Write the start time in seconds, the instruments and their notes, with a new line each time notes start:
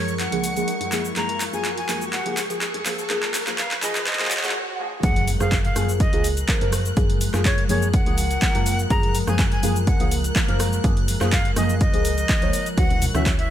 Already playing: fm bass F#2, synth stab F3 A#3 G#4, analog synth pad F3 G#3 A#4, flute C#5, string machine C#6, riser
0.08 cabasa
0.19 flute F#5, clap, closed hi-hat, cabasa
0.32 fm bass C#2, synth stab F3 A#3 G#4, closed hi-hat
0.44 open hi-hat, cabasa
0.56 synth stab F3 A#3 G#4, closed hi-hat, cabasa
0.68 closed hi-hat, cabasa
0.81 fm bass F#2, closed hi-hat
0.92 synth stab F3 A#3 G#4, clap, open hi-hat, cabasa
1.05 cabasa
1.16 fm bass F#2, synth stab F3 A#3 G#4, flute A#5, clap, closed hi-hat, cabasa
1.29 closed hi-hat
1.40 clap, open hi-hat, cabasa
1.53 fm bass F#2, synth stab F3 A#3 G#4, flute G#5, cabasa
1.65 clap, closed hi-hat, cabasa
1.78 flute G#5, closed hi-hat
1.88 fm bass F#2, synth stab F3 A#3 G#4, clap, open hi-hat, cabasa
2.02 cabasa
2.13 flute F#5, clap, closed hi-hat, cabasa
2.25 fm bass C#2, synth stab F3 A#3 G#4, closed hi-hat
2.37 clap, open hi-hat, cabasa
2.49 synth stab F3 A#3 G#4, closed hi-hat, cabasa
2.61 clap, closed hi-hat, cabasa
2.74 fm bass F#2, closed hi-hat
2.85 synth stab F3 A#3 G#4, clap, open hi-hat, cabasa
2.99 cabasa
3.09 fm bass F#2, synth stab F3 A#3 G#4, clap, closed hi-hat, cabasa
3.23 clap, closed hi-hat
3.34 clap, open hi-hat, cabasa
3.46 fm bass F#2, synth stab F3 A#3 G#4, clap, closed hi-hat, cabasa
3.58 flute F5, clap, closed hi-hat, cabasa
3.71 clap, closed hi-hat
3.82 fm bass F#2, synth stab F3 A#3 G#4, flute D#5, clap, open hi-hat, cabasa
3.95 clap, closed hi-hat, cabasa
4.07 flute D#5, clap, closed hi-hat, swell, cabasa
4.13 clap
4.19 fm bass C#2, synth stab F3 A#3 G#4, clap, closed hi-hat
4.25 clap
4.31 clap, open hi-hat, cabasa
4.37 clap
4.43 synth stab F3 A#3 G#4, clap, closed hi-hat, cabasa
4.49 clap
4.79 synth stab F3 A#3 G#4
5.03 fm bass F#2, synth stab F3 A#3 G#4, analog synth pad F3 G#3 A#4, flute F#5, string machine F#6, kick, closed hi-hat, impact, cabasa
5.16 closed hi-hat
5.28 open hi-hat, cabasa
5.40 fm bass F#2, synth stab F3 A#3 G#4, flute F5, cross-stick, cabasa
5.52 kick, clap, closed hi-hat, cabasa
5.65 flute F5, closed hi-hat
5.75 fm bass F#2, synth stab F3 A#3 G#4, cross-stick, open hi-hat, cabasa
5.89 cabasa
6.00 flute D#5, kick, closed hi-hat, cabasa
6.12 fm bass C#2, synth stab F3 A#3 G#4, closed hi-hat
6.24 open hi-hat, cabasa
6.37 closed hi-hat, cabasa
6.48 synth stab F3 A#3 A#4, kick, clap, closed hi-hat, cabasa
6.61 fm bass F#2, synth stab F3 A#3 A#4, closed hi-hat
6.72 synth stab F3 A#3 A#4, cross-stick, open hi-hat, cabasa
6.85 cabasa
6.96 fm bass F#2, synth stab F3 A#3 G#4, kick, closed hi-hat, cabasa
7.10 closed hi-hat
7.21 open hi-hat, cabasa
7.33 fm bass F#2, synth stab F3 A#3 G#4, cross-stick, clap, cabasa
7.45 flute C#5, kick, clap, closed hi-hat, cabasa
7.58 closed hi-hat
7.69 fm bass F#2, synth stab F3 A#3 G#4, flute C#5, open hi-hat, cabasa
7.82 cabasa
7.94 flute F#5, kick, closed hi-hat, cabasa
8.06 fm bass C#2, synth stab F3 A#3 G#4, closed hi-hat
8.18 open hi-hat, cabasa
8.31 closed hi-hat, cabasa
8.41 synth stab F3 A#3 A#4, kick, clap, closed hi-hat, cabasa
8.54 fm bass F#2, synth stab F3 A#3 A#4, closed hi-hat
8.66 synth stab F3 A#3 A#4, open hi-hat, cabasa
8.79 cabasa
8.90 fm bass F#2, synth stab F3 A#3 G#4, flute A#5, kick, closed hi-hat, cabasa
9.03 closed hi-hat
9.15 open hi-hat, cabasa
9.27 fm bass F#2, synth stab F3 A#3 G#4, flute G#5, cross-stick, cabasa
9.39 kick, clap, closed hi-hat, cabasa
9.52 flute G#5, closed hi-hat
9.63 fm bass F#2, synth stab F3 A#3 G#4, open hi-hat, cabasa
9.76 cabasa
9.87 flute F#5, kick, closed hi-hat, cabasa
10.00 fm bass C#2, synth stab F3 A#3 G#4, closed hi-hat
10.11 open hi-hat, cabasa
10.24 closed hi-hat, cabasa
10.35 synth stab F3 A#3 A#4, kick, clap, closed hi-hat, cabasa
10.48 fm bass F#2, synth stab F3 A#3 A#4, closed hi-hat
10.59 synth stab F3 A#3 A#4, cross-stick, open hi-hat, cabasa
10.73 cabasa
10.83 fm bass F#2, synth stab F3 A#3 G#4, kick, closed hi-hat, cabasa
10.97 closed hi-hat
11.08 open hi-hat, cabasa
11.21 fm bass F#2, synth stab F3 A#3 G#4, cross-stick, clap, cabasa
11.32 flute F5, kick, clap, closed hi-hat, cabasa
11.45 closed hi-hat
11.56 fm bass F#2, synth stab F3 A#3 G#4, flute D#5, cross-stick, open hi-hat, cabasa
11.69 cabasa
11.81 flute D#5, kick, closed hi-hat, cabasa
11.93 fm bass C#2, synth stab F3 A#3 G#4, closed hi-hat
12.05 open hi-hat, cabasa
12.18 closed hi-hat, cabasa
12.29 kick, clap, closed hi-hat, cabasa
12.41 fm bass C#2, synth stab F3 A#3 C#5, closed hi-hat
12.53 open hi-hat, cabasa
12.66 closed hi-hat, cabasa
12.77 fm bass D2, synth stab E3 C#4 F#4, analog synth pad F#3 E4 C#5, flute F#5, kick, closed hi-hat, cabasa
12.90 closed hi-hat, high conga
13.02 open hi-hat, low conga, cabasa
13.14 fm bass D2, synth stab E3 C#4 F#4, flute E5, cross-stick, cabasa
13.26 kick, clap, closed hi-hat, high conga, cabasa
13.39 flute E5, closed hi-hat